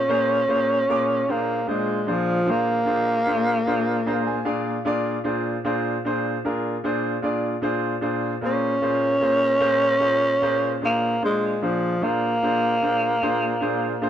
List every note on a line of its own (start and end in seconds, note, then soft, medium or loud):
0.00 1.32 C#4 medium
0.08 0.39 A#2 medium
0.08 0.39 A#3 medium
0.08 0.39 F4 medium
0.08 0.40 G#4 medium
0.08 0.40 C5 medium
0.48 0.78 A#2 medium
0.48 0.79 A#3 medium
0.48 0.79 F4 medium
0.48 0.79 G#4 soft
0.48 0.79 C5 medium
0.89 1.19 A#2 medium
0.89 1.19 A#3 medium
0.89 1.19 F4 medium
0.89 1.19 G#4 medium
0.89 1.19 D6 medium
1.28 1.58 A#2 medium
1.28 1.68 A#3 medium
1.28 1.58 D4 soft
1.28 1.59 F4 soft
1.28 1.59 G#4 soft
1.28 1.59 C5 medium
1.67 1.97 A#2 medium
1.67 2.11 G#3 medium
1.67 1.98 D4 soft
1.67 1.98 F4 soft
1.67 1.98 G#4 soft
1.67 1.98 C5 medium
2.07 2.37 A#2 medium
2.07 2.52 F3 medium
2.07 2.37 D4 soft
2.07 2.37 F4 soft
2.07 2.38 G#4 soft
2.07 2.38 C5 medium
2.46 2.77 A#2 soft
2.46 2.76 D4 soft
2.46 2.77 F4 soft
2.46 2.77 G#4 soft
2.46 2.77 C5 medium
2.50 4.83 A#3 loud
2.85 3.16 A#2 soft
2.85 3.16 D4 soft
2.85 3.17 F4 soft
2.85 3.17 G#4 soft
2.85 3.17 C5 medium
3.26 3.57 A#2 soft
3.26 3.57 D4 soft
3.26 3.57 F4 soft
3.26 3.57 G#4 soft
3.26 3.57 C5 medium
3.66 3.96 A#2 medium
3.66 3.97 D4 medium
3.66 3.97 F4 medium
3.66 3.97 G#4 medium
3.66 3.97 C5 medium
4.06 4.36 A#2 medium
4.06 4.36 D4 medium
4.06 4.37 F4 medium
4.06 4.36 G#4 medium
4.06 4.37 C5 medium
4.06 4.25 A#5 medium
4.27 4.45 G#5 medium
4.45 4.75 A#2 medium
4.45 4.76 D4 medium
4.45 4.75 F4 medium
4.45 4.76 G#4 medium
4.45 4.76 D5 medium
4.45 4.83 F5 medium
4.85 5.15 A#2 medium
4.85 5.15 D4 medium
4.85 5.15 F4 medium
4.85 5.16 G#4 medium
4.85 5.16 D5 medium
5.24 5.55 A#2 medium
5.24 5.55 D4 medium
5.24 5.55 F4 medium
5.24 5.55 G#4 soft
5.24 5.55 C5 medium
5.64 5.95 A#2 medium
5.64 5.95 D4 medium
5.64 5.95 F4 medium
5.64 5.95 G#4 medium
5.64 5.95 C5 medium
6.05 6.35 A#2 medium
6.05 6.35 D4 medium
6.05 6.36 F4 soft
6.05 6.36 G#4 medium
6.05 6.36 C5 medium
6.45 6.75 A#2 medium
6.45 6.75 D4 medium
6.45 6.75 F4 soft
6.45 6.75 G#4 medium
6.45 6.75 A#4 medium
6.84 7.14 A#2 medium
6.84 7.14 D4 medium
6.84 7.14 F4 medium
6.84 7.14 G#4 medium
6.84 7.15 C5 medium
7.22 7.53 A#2 medium
7.22 7.54 D4 medium
7.22 7.53 F4 medium
7.22 7.54 G#4 medium
7.22 7.54 D5 medium
7.61 7.93 A#2 medium
7.61 7.93 D4 medium
7.61 7.93 F4 medium
7.61 7.93 G#4 medium
7.61 7.93 C5 medium
8.01 8.32 A#2 medium
8.01 8.33 D4 soft
8.01 8.33 F4 soft
8.01 8.33 G#4 medium
8.01 8.33 C5 medium
8.41 8.72 A#2 medium
8.41 8.73 A#3 soft
8.41 8.73 F4 soft
8.41 8.73 G#4 soft
8.41 8.74 C5 medium
8.46 10.80 C#4 loud
8.82 9.12 A#2 medium
8.82 9.13 A#3 soft
8.82 9.13 F4 soft
8.82 9.13 G#4 soft
8.82 9.13 C5 medium
9.21 9.52 A#2 medium
9.21 9.52 A#3 soft
9.21 9.52 F4 soft
9.21 9.52 G#4 soft
9.21 9.53 C5 medium
9.60 9.91 A#2 medium
9.60 9.92 A#3 medium
9.60 9.92 F4 medium
9.60 9.92 G#4 medium
9.60 9.92 C5 medium
9.99 10.31 A#2 medium
9.99 10.31 A#3 medium
9.99 10.32 F4 medium
9.99 10.31 G#4 medium
9.99 10.32 C5 medium
10.42 10.72 A#2 medium
10.42 10.72 A#3 medium
10.42 10.72 F4 medium
10.42 10.72 G#4 medium
10.42 10.73 C5 medium
10.81 11.12 A#2 soft
10.81 11.22 A#3 medium
10.81 11.12 D4 soft
10.81 11.12 F4 soft
10.81 11.13 G#4 soft
10.81 11.13 C5 medium
11.22 11.52 A#2 soft
11.22 11.65 G#3 medium
11.22 11.52 D4 soft
11.22 11.52 F4 soft
11.22 11.53 G#4 soft
11.22 11.53 C5 medium
11.61 11.92 A#2 soft
11.61 12.05 F3 medium
11.61 11.92 D4 soft
11.61 11.93 F4 soft
11.61 11.93 G#4 soft
11.61 11.93 C5 medium
12.01 12.32 A#2 soft
12.01 14.10 A#3 medium
12.01 12.32 D4 soft
12.01 12.32 F4 soft
12.01 12.32 G#4 soft
12.01 12.32 C5 medium
12.42 12.72 A#2 soft
12.42 12.72 D4 soft
12.42 12.72 F4 soft
12.42 12.73 G#4 soft
12.42 12.73 C5 medium
12.82 13.12 A#2 soft
12.82 13.12 D4 soft
12.82 13.12 F4 soft
12.82 13.12 G#4 soft
12.82 13.13 C5 medium
13.21 13.52 A#2 medium
13.21 13.52 D4 medium
13.21 13.52 F4 medium
13.21 13.52 G#4 medium
13.21 13.52 C5 medium
13.60 13.91 A#2 medium
13.60 13.91 D4 medium
13.60 13.91 F4 medium
13.60 13.92 G#4 medium
13.60 13.92 C5 medium
14.02 14.10 A#2 medium
14.02 14.10 D4 medium
14.02 14.10 F4 medium
14.02 14.10 G#4 medium
14.02 14.10 C5 medium